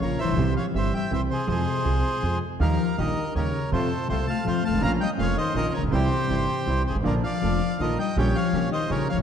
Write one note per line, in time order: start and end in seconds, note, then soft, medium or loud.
0.00 0.16 A#1 medium
0.00 0.17 A#1 medium
0.00 0.17 A#2 medium
0.00 0.17 C#3 medium
0.00 0.16 C#3 soft
0.00 0.17 F3 soft
0.00 0.17 A#3 soft
0.00 0.17 F4 soft
0.00 0.19 A#4 medium
0.00 0.18 C#5 medium
0.18 0.53 E3 medium
0.18 0.54 C5 medium
0.18 0.53 E5 medium
0.24 0.27 A1 soft
0.24 0.29 A1 soft
0.24 0.32 A#1 medium
0.30 0.34 A#1 medium
0.30 0.36 B1 medium
0.34 0.38 B1 medium
0.34 0.53 C2 medium
0.34 0.53 E3 medium
0.38 0.53 C3 medium
0.38 0.54 G3 medium
0.38 0.54 C4 medium
0.38 0.54 G4 medium
0.55 0.64 F3 medium
0.55 0.66 C#5 medium
0.55 0.65 F5 medium
0.73 0.90 G1 medium
0.73 0.90 G2 medium
0.73 0.91 E3 medium
0.73 0.90 E3 soft
0.73 0.90 G3 soft
0.73 0.90 C4 soft
0.73 0.90 G4 soft
0.73 0.94 E5 medium
0.78 0.94 C5 medium
0.93 1.09 G3 medium
0.93 1.11 E5 medium
0.93 1.13 G5 medium
1.10 1.27 C2 medium
1.10 1.27 C3 medium
1.10 1.19 E3 medium
1.10 1.27 E3 soft
1.10 1.27 G3 soft
1.10 1.27 C4 soft
1.10 1.27 G4 soft
1.10 1.21 E5 medium
1.15 1.22 C5 medium
1.28 1.46 C3 medium
1.28 1.47 C5 medium
1.33 1.49 G#4 medium
1.47 1.64 F2 medium
1.47 2.37 C3 medium
1.47 1.64 F3 medium
1.47 1.64 G#3 medium
1.47 1.64 C4 medium
1.47 1.64 G#4 medium
1.47 2.39 G#4 medium
1.47 2.37 C5 medium
1.84 2.01 C2 soft
1.84 2.01 C2 medium
1.84 2.01 C3 medium
1.84 2.01 F3 soft
1.84 2.01 G#3 soft
1.84 2.01 C4 soft
1.84 2.01 G#4 soft
2.22 2.38 F2 soft
2.22 2.39 F2 medium
2.22 2.38 F3 soft
2.22 2.38 G#3 soft
2.22 2.38 C4 soft
2.22 2.39 G#4 soft
2.60 2.76 D#2 medium
2.60 2.76 D#3 medium
2.60 2.95 F3 medium
2.60 2.76 G3 medium
2.60 2.76 A#3 medium
2.60 2.76 D#4 medium
2.60 2.76 G4 medium
2.60 2.96 A#4 medium
2.60 2.99 F5 medium
2.98 3.14 A#1 medium
2.98 3.14 A#2 soft
2.98 3.33 D#3 medium
2.98 3.14 D#3 soft
2.98 3.14 G3 soft
2.98 3.14 A#3 soft
2.98 3.14 D#4 soft
2.98 3.14 G4 soft
2.98 3.14 G4 medium
2.98 3.34 A#4 medium
2.98 3.33 D#5 medium
3.35 3.51 D#2 medium
3.35 3.51 D#2 soft
3.35 3.69 C#3 medium
3.35 3.51 D#3 soft
3.35 3.51 G3 soft
3.35 3.51 A#3 soft
3.35 3.51 D#4 soft
3.35 3.51 G4 soft
3.35 3.51 G4 medium
3.35 3.71 A#4 medium
3.35 3.70 C#5 medium
3.71 3.88 F2 medium
3.71 4.06 C3 medium
3.71 3.87 C3 medium
3.71 3.88 F3 medium
3.71 3.88 A3 medium
3.71 3.88 C4 medium
3.71 3.88 F4 medium
3.71 4.08 A4 medium
3.71 4.07 C5 medium
4.07 4.24 C2 medium
4.07 4.25 C2 medium
4.07 4.25 C3 medium
4.07 4.24 C3 medium
4.07 4.24 F3 soft
4.07 4.24 A3 soft
4.07 4.25 A3 medium
4.07 4.25 C4 soft
4.07 4.24 F4 medium
4.07 4.25 F4 medium
4.07 4.26 C5 medium
4.12 4.28 A4 medium
4.26 4.44 A3 medium
4.26 4.45 F5 medium
4.26 4.46 A5 medium
4.45 4.61 F2 medium
4.45 4.62 F2 medium
4.45 4.61 C3 soft
4.45 4.62 F3 medium
4.45 4.61 F3 medium
4.45 4.61 A3 soft
4.45 4.62 C4 soft
4.45 4.61 F4 soft
4.45 4.62 F4 medium
4.45 4.64 C5 medium
4.45 4.63 F5 medium
4.63 4.81 A3 medium
4.63 4.82 F5 medium
4.63 4.82 A5 loud
4.68 4.73 G1 soft
4.68 4.77 G#1 medium
4.73 4.77 G#1 medium
4.73 4.82 A1 medium
4.78 4.82 A1 medium
4.78 4.97 A#1 medium
4.78 4.97 A#2 medium
4.78 4.97 C#3 medium
4.78 4.97 F3 medium
4.78 4.97 A#3 medium
4.78 4.90 A#3 medium
4.78 4.97 F4 medium
4.82 4.98 A#1 medium
4.82 4.98 A#3 medium
4.82 4.98 C#4 medium
4.82 4.98 F4 medium
4.82 4.92 F5 medium
4.82 4.91 A#5 loud
4.99 5.08 G3 medium
4.99 5.11 D#5 medium
4.99 5.09 G5 medium
5.17 5.33 F1 medium
5.17 5.34 F1 medium
5.17 5.33 F2 medium
5.17 5.33 C#3 soft
5.17 5.35 F3 medium
5.17 5.33 F3 soft
5.17 5.33 A#3 soft
5.17 5.34 A#3 medium
5.17 5.34 C#4 medium
5.17 5.34 F4 medium
5.17 5.36 F5 loud
5.22 5.37 C#5 medium
5.35 5.53 D#3 medium
5.35 5.54 D#5 medium
5.40 5.56 C5 medium
5.54 5.70 A#1 medium
5.54 5.70 A#2 medium
5.54 5.70 C#3 soft
5.54 5.72 D#3 medium
5.54 5.70 F3 soft
5.54 5.70 A#3 soft
5.54 5.71 A#3 medium
5.54 5.71 C#4 soft
5.54 5.70 F4 medium
5.54 5.71 F4 medium
5.54 5.73 A#4 medium
5.54 5.72 D#5 medium
5.73 5.81 C#3 medium
5.73 5.84 A#4 medium
5.73 5.82 C#5 medium
5.78 5.83 A1 soft
5.78 5.82 A1 soft
5.82 5.87 A#1 medium
5.86 5.92 B1 medium
5.86 5.91 B1 medium
5.91 6.07 C2 medium
5.91 6.08 C2 medium
5.91 6.07 C3 medium
5.91 6.82 C3 medium
5.91 6.07 E3 medium
5.91 6.08 G3 medium
5.91 6.08 C4 medium
5.91 6.08 E4 medium
5.91 6.83 G4 medium
5.91 6.82 C5 loud
6.28 6.45 G1 medium
6.28 6.45 G2 medium
6.28 6.44 C3 soft
6.28 6.44 E3 soft
6.28 6.44 G3 soft
6.28 6.46 G3 soft
6.28 6.46 C4 soft
6.28 6.45 E4 medium
6.28 6.46 E4 medium
6.66 6.82 C2 soft
6.66 6.83 C2 medium
6.66 6.83 C3 soft
6.66 6.82 E3 soft
6.66 6.82 G3 soft
6.66 6.83 G3 soft
6.66 6.83 C4 soft
6.66 6.83 E4 soft
6.66 6.84 E4 medium
6.85 6.94 C3 medium
6.85 6.95 C5 medium
6.89 6.95 G1 soft
6.89 6.94 G1 soft
6.89 6.97 G#4 medium
6.95 7.00 G#1 medium
7.00 7.05 A1 medium
7.00 7.20 A#1 medium
7.00 7.20 A#2 medium
7.00 7.12 D3 medium
7.00 7.20 D3 medium
7.00 7.20 F3 medium
7.04 7.21 A#1 medium
7.04 7.21 A#3 medium
7.04 7.21 D4 medium
7.04 7.21 F4 medium
7.04 7.15 A#4 medium
7.04 7.13 D5 medium
7.22 7.75 F3 medium
7.22 7.77 D5 medium
7.22 7.82 F5 loud
7.42 7.58 F1 medium
7.42 7.58 F2 medium
7.42 7.58 D3 soft
7.42 7.58 F3 soft
7.42 7.58 A#3 soft
7.42 7.59 A#3 medium
7.42 7.59 D4 soft
7.42 7.58 F4 medium
7.42 7.59 F4 medium
7.79 7.95 A#1 medium
7.79 7.96 A#1 soft
7.79 7.96 A#2 soft
7.79 7.96 D3 soft
7.79 7.96 D#3 medium
7.79 7.95 F3 soft
7.79 7.96 A#3 medium
7.79 7.96 A#3 soft
7.79 7.96 D4 soft
7.79 7.96 F4 soft
7.79 7.96 F4 medium
7.79 7.99 A#4 medium
7.79 7.98 D#5 medium
7.97 8.15 G3 medium
7.97 8.16 G5 medium
8.01 8.17 D#5 medium
8.16 8.32 A#1 medium
8.16 8.32 A#2 medium
8.16 8.32 C#3 medium
8.16 8.33 G3 medium
8.16 8.32 G3 medium
8.16 8.32 A#3 medium
8.16 8.33 C#4 medium
8.16 8.32 G4 medium
8.16 8.33 G4 medium
8.16 8.35 C#5 medium
8.16 8.36 G5 medium
8.34 8.68 F3 medium
8.34 8.70 C#5 medium
8.34 8.69 F5 medium
8.53 8.68 A#1 medium
8.53 8.69 A#1 medium
8.53 8.69 A#2 medium
8.53 8.69 C#3 soft
8.53 8.69 G3 soft
8.53 8.69 A#3 medium
8.53 8.69 A#3 soft
8.53 8.69 C#4 soft
8.53 8.69 G4 medium
8.70 8.88 D#3 medium
8.70 8.91 D#5 medium
8.74 8.90 C5 medium
8.89 9.05 A#1 medium
8.89 9.05 A#2 medium
8.89 9.06 C#3 medium
8.89 9.05 C#3 soft
8.89 9.05 G3 soft
8.89 9.05 A#3 soft
8.89 9.06 A#3 soft
8.89 9.06 C#4 soft
8.89 9.05 G4 medium
8.89 9.06 G4 medium
8.89 9.08 A#4 medium
8.89 9.07 C#5 medium
9.09 9.17 A1 soft
9.09 9.17 F3 medium
9.09 9.19 C#5 medium
9.09 9.17 F5 medium
9.17 9.22 A#1 medium